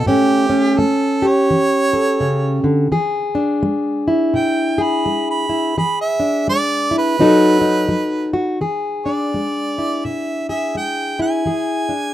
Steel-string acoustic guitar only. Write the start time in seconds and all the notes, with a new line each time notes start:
0.06 A2 A3 C#4
0.50 C#4
0.79 A3
1.22 G4
1.50 E3
1.93 A4
2.20 C#3
2.64 D3
2.92 E3 G#4
3.35 D4
3.63 G#3
4.08 E4
4.34 B2
4.78 G#4
5.06 G#3
5.49 E4
5.78 E3 G#4
6.20 D4
6.48 G#3
6.91 E4
7.19 B2 F#3 D#4 F#4 A4
7.61 D#4
7.89 F#3
8.33 F#4
8.61 E3 G#4
9.06 D4
9.34 G#3
9.78 E4
10.05 B2
10.49 G#4
10.75 G#3
11.19 E4
11.46 E3 G#4
11.89 D4